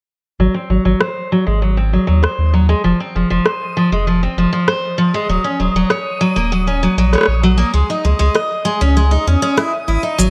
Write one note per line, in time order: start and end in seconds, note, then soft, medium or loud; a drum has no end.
0.39 0.49 G#1 medium
0.39 0.53 F#3 medium
0.39 10.30 D#6 medium
0.54 0.68 C4 medium
0.70 0.79 G#1 medium
0.70 0.84 F#3 medium
0.85 0.95 G#1 medium
0.85 0.99 F#3 medium
1.01 1.30 C5 medium
1.01 cross-stick medium
1.32 1.46 F#3 medium
1.47 1.98 G#1 medium
1.47 1.60 G#3 medium
1.62 1.76 F#3 medium
1.77 1.91 C4 medium
1.93 2.06 F#3 medium
2.07 2.27 D#2 medium
2.07 2.21 F#3 medium
2.23 2.52 C5 medium
2.23 cross-stick medium
2.38 2.75 D#2 medium
2.53 2.67 F#3 medium
2.69 2.83 G#3 medium
2.84 2.94 F1 medium
2.84 2.98 F3 medium
3.00 3.14 C4 medium
3.15 3.24 F1 medium
3.15 3.29 F3 medium
3.30 3.40 F1 medium
3.30 3.44 F3 medium
3.46 3.75 C5 medium
3.46 cross-stick medium
3.77 3.90 F3 medium
3.92 4.28 F1 medium
3.92 4.06 G#3 medium
4.07 4.21 F3 medium
4.23 4.36 C4 medium
4.37 4.47 F1 medium
4.37 4.52 F3 medium
4.53 4.67 F3 medium
4.68 4.97 C5 medium
4.68 cross-stick medium
4.98 5.12 F3 medium
5.14 5.28 G#3 medium
5.29 5.38 D#1 loud
5.29 5.43 F#3 medium
5.44 5.58 C#4 medium
5.60 5.69 D#1 medium
5.60 5.74 F#3 medium
5.75 5.84 D#1 medium
5.75 5.89 F#3 medium
5.90 6.20 C#5 medium
5.90 cross-stick medium
6.21 6.35 F#3 medium
6.36 6.88 D#1 medium
6.36 6.50 A#3 medium
6.52 6.66 F#3 medium
6.67 6.81 C#4 medium
6.83 6.96 F#3 medium
6.97 7.16 A#1 medium
6.97 7.12 F#3 medium
7.13 7.42 C#5 medium
7.13 cross-stick soft
7.15 cross-stick soft
7.18 cross-stick medium
7.21 cross-stick medium
7.23 cross-stick medium
7.26 7.64 A#1 medium
7.26 cross-stick medium
7.43 7.57 F#3 medium
7.58 7.72 A#3 medium
7.74 7.83 C#2 loud
7.74 7.88 G#3 medium
7.90 8.03 D#4 medium
8.05 8.14 C#2 medium
8.05 8.18 G#3 medium
8.19 8.29 C#2 medium
8.19 8.33 G#3 medium
8.34 8.64 D#5 medium
8.34 cross-stick medium
8.65 8.79 G#3 medium
8.81 9.18 C#2 medium
8.81 8.95 C#4 medium
8.97 9.10 G#3 medium
9.11 9.25 D#4 medium
9.27 9.36 E2 medium
9.27 9.41 C#4 medium
9.42 9.56 C#4 medium
9.57 9.71 E4 medium
9.57 cross-stick medium
9.88 9.98 G#1 medium
9.88 10.02 E4 medium
10.03 10.17 D#4 medium
10.18 10.28 G#1 medium
10.18 10.30 F#3 medium
10.18 shaker soft